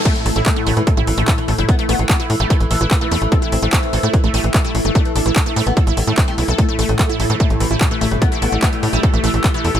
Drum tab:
CC |x---------------|----------------|----------------|----------------|
HH |xxoxxxoxxxoxxxox|xxoxxxoxxxoxxxox|xxoxxxoxxxoxxxox|xxoxxxoxxxoxxxox|
CP |----x-------x---|----x-------x---|----x-------x---|----x-------x---|
BD |o---o---o---o---|o---o---o---o---|o---o---o---o---|o---o---o---o---|

CC |----------------|----------------|
HH |xxoxxxoxxxoxxxox|xxoxxxoxxxoxxxox|
CP |----x-------x---|----x-------x---|
BD |o---o---o---o---|o---o---o---o---|